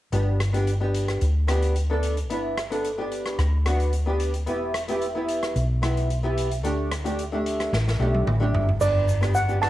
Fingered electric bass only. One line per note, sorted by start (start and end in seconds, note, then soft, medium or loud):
0.13 1.18 G1 medium
1.22 2.30 D2 medium
2.30 3.35 G1 medium
3.38 4.47 D2 medium
4.47 5.52 E1 medium
5.56 6.64 B1 medium
6.64 7.69 D2 medium
7.73 7.97 A1 medium
7.99 8.24 B1 medium
8.27 8.51 A1 medium
8.54 8.78 G1 medium
8.80 9.70 G1 medium